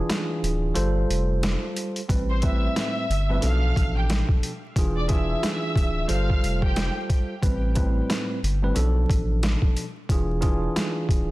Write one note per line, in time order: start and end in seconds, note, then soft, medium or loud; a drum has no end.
0.00 0.75 E3 medium
0.00 0.75 D4 medium
0.00 0.74 F4 medium
0.00 0.76 G#4 loud
0.10 snare loud
0.10 snare medium
0.10 closed hi-hat medium
0.43 0.72 D1 medium
0.43 closed hi-hat medium
0.74 1.05 G1 loud
0.74 2.00 G3 loud
0.74 2.00 F4 medium
0.74 2.00 A4 medium
0.74 2.01 C5 loud
0.74 closed hi-hat medium
1.09 1.56 F1 loud
1.09 closed hi-hat medium
1.43 snare loud
1.43 snare medium
1.43 closed hi-hat medium
1.76 closed hi-hat medium
1.96 closed hi-hat soft
2.08 2.68 A1 loud
2.08 2.40 A2 medium
2.08 2.40 G3 medium
2.08 2.40 C4 medium
2.08 2.41 B4 loud
2.08 kick loud
2.08 closed hi-hat loud
2.30 2.42 C5 medium
2.30 2.42 C6 medium
2.42 3.05 A2 medium
2.42 3.05 G3 medium
2.42 3.05 C4 medium
2.42 3.05 B4 medium
2.42 3.39 E5 medium
2.42 3.39 E6 medium
2.42 kick medium
2.42 closed hi-hat medium
2.76 snare loud
2.76 snare medium
2.76 closed hi-hat medium
3.09 3.39 G1 loud
3.09 closed hi-hat medium
3.29 3.43 A2 loud
3.29 3.43 G3 medium
3.29 3.43 C4 medium
3.29 3.44 B4 loud
3.41 3.72 B1 loud
3.41 4.50 B2 loud
3.41 4.51 F3 medium
3.41 4.51 D4 medium
3.41 4.51 A4 loud
3.41 3.93 F5 medium
3.41 3.93 F6 medium
3.41 closed hi-hat medium
3.76 4.23 A1 medium
3.76 kick loud
3.76 closed hi-hat medium
3.96 4.09 G4 medium
3.96 4.08 G5 medium
4.10 snare loud
4.10 snare medium
4.10 closed hi-hat medium
4.29 kick medium
4.43 closed hi-hat medium
4.76 5.35 E1 loud
4.76 5.06 E3 medium
4.76 5.07 D4 medium
4.76 5.08 F4 medium
4.76 5.08 G#4 medium
4.76 kick loud
4.76 closed hi-hat loud
4.96 5.08 D5 medium
4.96 5.09 D6 medium
5.08 6.08 E3 medium
5.08 6.09 D4 medium
5.08 6.07 F4 medium
5.08 6.09 G#4 loud
5.08 6.05 E5 medium
5.08 6.05 E6 medium
5.08 kick medium
5.08 closed hi-hat medium
5.43 snare loud
5.43 snare medium
5.43 closed hi-hat medium
5.76 6.05 D1 medium
5.76 kick loud
5.76 closed hi-hat medium
6.08 6.39 G1 loud
6.08 7.33 G3 loud
6.08 7.33 F4 medium
6.08 7.34 A4 medium
6.08 7.34 C5 loud
6.08 6.59 F5 medium
6.08 6.59 F6 medium
6.08 closed hi-hat medium
6.30 kick medium
6.43 6.89 F1 loud
6.43 closed hi-hat medium
6.62 6.93 G4 medium
6.62 6.93 G5 medium
6.62 kick medium
6.76 snare loud
6.76 snare medium
6.76 closed hi-hat medium
7.10 kick loud
7.10 closed hi-hat medium
7.41 8.01 A1 loud
7.41 7.73 A2 medium
7.41 7.73 G3 medium
7.41 7.74 C4 medium
7.41 7.74 B4 loud
7.41 kick loud
7.41 closed hi-hat loud
7.75 8.38 A2 medium
7.75 8.38 G3 medium
7.75 8.38 C4 medium
7.75 8.39 B4 medium
7.75 kick medium
7.75 closed hi-hat medium
8.10 snare loud
8.10 snare medium
8.10 closed hi-hat medium
8.43 8.72 G1 loud
8.43 closed hi-hat medium
8.63 8.76 A2 medium
8.63 8.76 G3 medium
8.63 8.77 C4 medium
8.63 8.77 B4 loud
8.74 9.05 B1 loud
8.74 9.84 B2 medium
8.74 9.84 F3 medium
8.74 9.84 D4 medium
8.74 9.85 A4 loud
8.74 closed hi-hat medium
9.10 9.56 A1 medium
9.10 kick loud
9.10 closed hi-hat medium
9.43 snare loud
9.43 snare medium
9.43 closed hi-hat medium
9.62 kick medium
9.77 closed hi-hat medium
10.09 10.68 E1 loud
10.09 10.40 E3 medium
10.09 10.40 D4 medium
10.09 10.41 F4 medium
10.09 10.41 G#4 medium
10.09 kick loud
10.09 closed hi-hat loud
10.41 11.31 E3 medium
10.41 11.31 D4 medium
10.41 11.31 F4 medium
10.41 11.31 G#4 loud
10.41 kick medium
10.41 closed hi-hat medium
10.76 snare loud
10.76 snare medium
10.76 closed hi-hat medium
11.09 11.31 D1 medium
11.09 kick medium
11.09 closed hi-hat medium